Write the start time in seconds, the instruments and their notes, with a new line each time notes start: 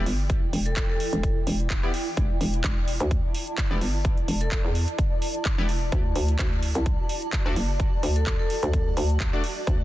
Already playing: ambient pad E4 D5 G5
0.06 fm bass G1, open hi-hat
0.30 kick, closed hi-hat
0.53 fm bass E1, open hi-hat
0.66 vibraphone A4, closed hi-hat
0.77 kick, clap, closed hi-hat
0.89 vibraphone A4
1.00 open hi-hat
1.13 fm bass E1, closed hi-hat
1.23 kick, closed hi-hat
1.47 fm bass E1, open hi-hat
1.60 closed hi-hat
1.70 kick, clap, closed hi-hat
1.83 synth stab B3 E4 G4 D5
1.94 open hi-hat
2.17 fm bass E1, kick, closed hi-hat
2.33 ambient pad A5
2.41 fm bass E1, open hi-hat
2.54 closed hi-hat
2.64 fm bass E1, kick, clap, closed hi-hat
2.88 open hi-hat
3.00 fm bass D2, closed hi-hat
3.11 kick, closed hi-hat
3.35 open hi-hat
3.47 closed hi-hat
3.58 kick, clap, closed hi-hat
3.71 fm bass E1, synth stab B3 E4 G4 D5
3.81 fm bass G1, open hi-hat
4.05 kick, closed hi-hat
4.18 closed hi-hat
4.28 fm bass E1, open hi-hat
4.41 vibraphone A4, closed hi-hat
4.52 kick, clap, closed hi-hat
4.65 fm bass E2
4.75 open hi-hat
4.88 closed hi-hat
4.99 kick, closed hi-hat
5.22 open hi-hat
5.35 closed hi-hat
5.45 kick, clap, closed hi-hat
5.58 fm bass E1, synth stab B3 E4 G4 D5
5.69 open hi-hat
5.92 fm bass D2, ambient pad F#4, kick, closed hi-hat
6.16 fm bass D2, open hi-hat
6.28 closed hi-hat
6.39 fm bass D2, kick, clap, closed hi-hat
6.62 open hi-hat
6.75 fm bass C2, closed hi-hat
6.86 kick, closed hi-hat
7.09 open hi-hat
7.22 closed hi-hat
7.33 kick, clap, closed hi-hat
7.46 fm bass D2, synth stab A3 D4 F#4 D5
7.56 fm bass F#1, open hi-hat
7.80 kick, closed hi-hat
8.03 fm bass D2, open hi-hat
8.16 vibraphone A4, closed hi-hat
8.26 kick, clap, closed hi-hat
8.39 vibraphone A4
8.50 open hi-hat
8.63 fm bass D2, closed hi-hat
8.73 kick, closed hi-hat
8.97 fm bass D2, open hi-hat
9.10 closed hi-hat
9.20 kick, clap, closed hi-hat
9.33 synth stab A3 D4 F#4 D5
9.44 open hi-hat
9.67 fm bass D2, kick, closed hi-hat